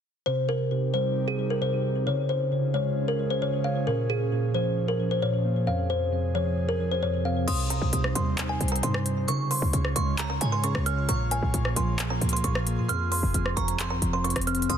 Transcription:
0.26 C3 C4 D#4 G4 C5
0.49 A#4
0.71 C3
0.94 G3 C5
1.28 G#4
1.39 G3
1.50 A#4
1.61 C3 C5
1.84 C5
2.06 C#3 C#4 F4 G#4 C#5
2.29 C5
2.51 C#3
2.74 G#3 C#5
3.08 A#4
3.19 G#3
3.30 C5
3.42 C#3 C#5
3.64 C#5 F5
3.87 A#2 F3 A#4
4.10 G#4
4.31 A#2
4.54 F3 C5
4.88 A#4
5.00 F3
5.11 C5
5.22 A#2 C#5
5.45 A#3
5.67 F2 C3 G#4 F5
5.90 C5
6.12 F2
6.35 F3 C#5
6.69 A#4
6.80 F3
6.91 C5
7.03 F2 C#5
7.25 C4 F5
7.48 C2 C3 G3 D#4 C5 C6 D#6, closed hi-hat, crash
7.70 A#5, closed hi-hat
7.82 C2
7.93 C2 C3, closed hi-hat
8.04 cross-stick
8.15 D#2 G3 C6, closed hi-hat
8.38 clap, closed hi-hat
8.49 G#5
8.61 C2 G3, closed hi-hat
8.68 A#5, closed hi-hat
8.76 closed hi-hat
8.83 G2 C3 C6, closed hi-hat
8.94 cross-stick
9.06 C5, closed hi-hat
9.28 C#3 G#3 F4 C#5 C#6, closed hi-hat
9.51 C6, open hi-hat
9.62 C#2
9.73 C#2 C#3, closed hi-hat
9.85 cross-stick
9.96 C#2 G#3 C6 C#6, closed hi-hat
10.18 A#5, clap, closed hi-hat
10.30 A#5
10.41 G#2 G#3 G#5, closed hi-hat
10.52 C6
10.64 C#3 C#6, closed hi-hat
10.75 C#2, cross-stick
10.86 C#5 F6, closed hi-hat
11.08 A#1 A#2 A#3 G#4 A#5 C#6, closed hi-hat
11.31 G#5, closed hi-hat
11.43 A#1
11.53 A#1 A#2, closed hi-hat
11.65 cross-stick
11.76 A#1 F3 C6, closed hi-hat
11.99 clap, closed hi-hat
12.10 A#5
12.21 C#2 F3, closed hi-hat
12.29 C6, closed hi-hat
12.37 closed hi-hat
12.44 A#1 A#2 C#6, closed hi-hat
12.55 cross-stick
12.67 A#3, closed hi-hat
12.78 A#2
12.88 F2 F3 C4 C6 F6, closed hi-hat
13.12 C6, open hi-hat
13.23 F1
13.34 F1 F2, closed hi-hat
13.46 cross-stick
13.56 F1 F3 A#5 C#6, closed hi-hat
13.68 closed hi-hat
13.79 C6, clap, closed hi-hat
13.90 G1 A#5
14.02 F1 F3, closed hi-hat
14.13 C6
14.24 F2 C#6, closed hi-hat
14.30 closed hi-hat
14.36 F1, cross-stick, closed hi-hat
14.42 closed hi-hat
14.46 C4 F6, closed hi-hat
14.55 closed hi-hat
14.62 closed hi-hat
14.69 C2 C3 G3 D#4 C6 D#6, closed hi-hat

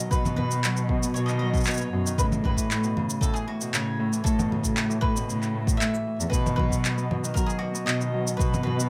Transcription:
Already playing: D#3 F#3 B3 D#5
0.11 B2 B4, kick, shaker
0.25 B3, low conga, shaker
0.36 B2 B4, low conga
0.51 D#3, shaker
0.64 F#3, clap, shaker
0.77 shaker
0.89 B2, kick
1.03 B3, shaker
1.14 B2 C#5, shaker
1.26 D#3 D#5, clap, shaker
1.39 F#3 D#5
1.54 kick, shaker
1.57 shaker
1.60 shaker
1.64 C#5, clap, shaker
1.67 B2, shaker
1.70 shaker
1.74 shaker
1.77 B3, shaker
1.81 shaker
1.92 F#2 B2
2.06 D#3, shaker
2.18 A2 C#3 B4, kick, shaker
2.32 low conga, shaker
2.44 A2 B4, kick, low conga
2.57 E3, kick, shaker
2.71 A2, clap, shaker
2.84 B2, shaker
2.97 C#3, low conga
3.10 shaker
3.21 A2 A4, kick, shaker
3.34 E3 G#4, shaker
3.48 A2 F#4
3.61 B2, shaker
3.73 A2 C#3 C#5, clap, shaker
3.99 A2
4.12 E3, shaker
4.24 A2 A4, kick, shaker
4.38 B2, low conga, shaker
4.51 C#3, low conga
4.64 kick, shaker
4.76 A2, clap, shaker
4.89 E3, shaker
5.01 A2 B4, kick
5.15 B2, shaker
5.28 A2 C#3, shaker
5.43 clap, shaker
5.54 A2
5.67 B2, kick, shaker
5.77 A2 E5
5.81 clap, shaker
5.94 E3, shaker
6.07 A2
6.20 E2, shaker
6.30 B2 B4, kick, shaker
6.45 D#3, low conga, shaker
6.56 F#3 B4, kick, low conga
6.71 kick, shaker
6.85 B2, clap, shaker
6.98 B3, shaker
7.11 B2, low conga
7.24 D#3, shaker
7.34 F#3 A#4, kick, shaker
7.46 G#4, shaker
7.59 B2 F#4
7.75 B3, shaker
7.86 B2 D#5, clap, shaker
8.01 D#3, shaker
8.14 F#3
8.27 shaker
8.37 B2 B4, kick, shaker
8.52 B3, low conga, shaker
8.63 B2 B4, low conga
8.78 D#3, shaker

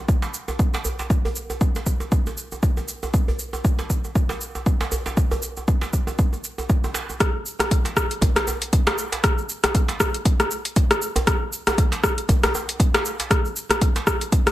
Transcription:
0.08 kick, cabasa
0.22 djembe slap, djembe tone, cabasa
0.34 cabasa
0.48 djembe tone, cabasa
0.59 kick, cabasa
0.74 djembe slap, djembe tone, cabasa
0.85 djembe bass, cabasa
0.99 djembe slap, djembe tone, cabasa
1.10 kick, cabasa
1.25 djembe tone, djembe bass
1.36 cabasa
1.50 djembe tone, cabasa
1.61 kick, cabasa
1.75 djembe slap, djembe tone, cabasa
1.86 kick, cabasa
2.00 djembe tone, cabasa
2.12 kick, cabasa
2.26 djembe tone, cabasa
2.37 cabasa
2.52 djembe tone, cabasa
2.63 kick, cabasa
2.77 djembe tone, cabasa
2.88 cabasa
3.03 djembe tone, cabasa
3.14 kick, cabasa
3.28 djembe tone, djembe bass
3.39 cabasa
3.53 djembe tone, cabasa
3.65 kick, cabasa
3.79 djembe slap, djembe tone, cabasa
3.90 kick, cabasa
4.04 djembe tone, cabasa
4.15 kick, cabasa
4.29 djembe slap, djembe tone, cabasa
4.41 cabasa
4.55 djembe tone, cabasa
4.66 kick, cabasa
4.81 djembe slap, djembe tone, cabasa
4.92 djembe bass, cabasa
5.06 djembe slap, djembe tone, cabasa
5.17 kick, cabasa
5.31 djembe tone, djembe bass, cabasa
5.42 cabasa
5.57 djembe tone, cabasa
5.68 kick, cabasa
5.81 djembe slap, djembe tone, cabasa
5.93 kick, cabasa
6.07 djembe tone, cabasa
6.19 kick, cabasa
6.33 djembe tone, cabasa
6.44 cabasa
6.58 djembe tone, cabasa
6.69 kick, cabasa
6.84 djembe tone, cabasa
6.94 djembe slap, cabasa
7.09 djembe tone, cabasa
7.20 kick, cross-stick, closed hi-hat, cabasa
7.46 cabasa
7.59 cross-stick, closed hi-hat, djembe tone, cabasa
7.71 kick, closed hi-hat, cabasa
7.85 closed hi-hat, djembe slap, cabasa
7.97 kick, cross-stick, cabasa
8.11 closed hi-hat, cabasa
8.21 kick, closed hi-hat, djembe bass, cabasa
8.36 cross-stick, closed hi-hat, djembe slap, djembe bass, cabasa
8.47 djembe tone, cabasa
8.62 closed hi-hat, cabasa
8.73 kick, closed hi-hat, cabasa
8.87 cross-stick, closed hi-hat, djembe slap, cabasa
8.98 cabasa
9.12 closed hi-hat, djembe slap, cabasa
9.24 kick, cross-stick, closed hi-hat, cabasa
9.38 cabasa
9.49 cabasa
9.64 cross-stick, closed hi-hat, djembe tone, cabasa
9.75 kick, closed hi-hat, cabasa
9.88 closed hi-hat, djembe slap, cabasa
10.00 kick, cross-stick, cabasa
10.14 closed hi-hat, cabasa
10.25 kick, closed hi-hat, cabasa
10.40 cross-stick, closed hi-hat, djembe tone, cabasa
10.51 cabasa
10.65 closed hi-hat, cabasa
10.76 kick, closed hi-hat, cabasa
10.91 cross-stick, closed hi-hat, cabasa
11.02 cabasa
11.16 closed hi-hat, djembe tone, djembe bass, cabasa
11.27 kick, cross-stick, closed hi-hat, cabasa
11.53 cabasa
11.67 cross-stick, closed hi-hat, djembe tone, cabasa
11.78 kick, closed hi-hat, cabasa
11.92 closed hi-hat, djembe slap, cabasa
12.03 kick, cross-stick, cabasa
12.18 closed hi-hat, cabasa
12.29 kick, closed hi-hat, djembe bass, cabasa
12.43 cross-stick, closed hi-hat, djembe slap, djembe bass, cabasa
12.54 djembe tone, cabasa
12.69 closed hi-hat, cabasa
12.80 kick, closed hi-hat, cabasa
12.94 cross-stick, closed hi-hat, djembe slap, cabasa
13.05 cabasa
13.20 closed hi-hat, djembe slap, cabasa
13.31 kick, cross-stick, closed hi-hat, cabasa
13.45 cabasa
13.56 cabasa
13.70 cross-stick, closed hi-hat, djembe tone, cabasa
13.81 kick, closed hi-hat, cabasa
13.96 closed hi-hat, djembe slap, cabasa
14.07 kick, cross-stick, cabasa
14.21 closed hi-hat, cabasa
14.32 kick, closed hi-hat, cabasa
14.46 cross-stick, closed hi-hat, djembe tone, cabasa

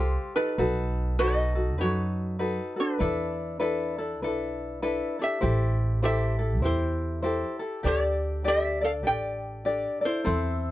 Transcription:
Already playing: C2 F4 G4 A4 C5 F5
0.00 A4
0.36 D#4 F4 G4 A4 B4
0.58 B1 D#4 F#4 A4 B4
1.19 D#4 F#4 A4 B4 D#5
1.55 D#4 F#4 A4
1.78 F#2 D#4 F#4 A4 B4 C#5
2.39 D#4 F#4 A4 B4
2.76 F#4 A4 B4
2.80 D4
2.99 E2 D4 E4 A4 B4
3.60 D4 E4 A4 B4
3.98 D4 E4 A4
4.22 B1 D4 E4 A4 B4
4.82 D4 E4 A4 B4
5.19 D4 E4 G4 A4
5.24 E5
5.41 A1 E4 G4 A4 C5
6.02 E4 G4 A4 C5 E5
6.39 E4 G4 A4
6.62 E2 E4 G4 A4 C5
7.22 E4 G4 A4 C5
7.59 E4 G4 A4
7.83 D2 D4 G4 A4 D5
8.44 D4 G4 A4 D5 E5
8.81 D4 A4 D5 F5
9.03 A1 D4 G4 A4 D5
9.07 D5 G5
9.65 D4 G4 A4 D5
10.01 D4 A4 D5
10.05 E4 C5
10.24 E2 C4 E4 A4 C5

